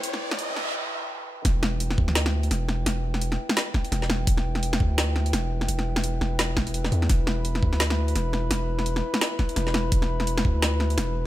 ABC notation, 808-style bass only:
X:1
M:4/4
L:1/8
Q:"Swing 16ths" 1/4=170
K:Em
V:1 name="808-style bass" clef=bass
z8 | E,,,3 D,,3 E,,,2 | E,,,3 z3 E,,,2 | E,,,3 D,,3 E,,,2 |
E,,,3 E,,,4 E,, | E,,,3 D,,3 E,,,2 | E,,,3 z3 E,,,2 | E,,,3 D,,3 E,,,2 |]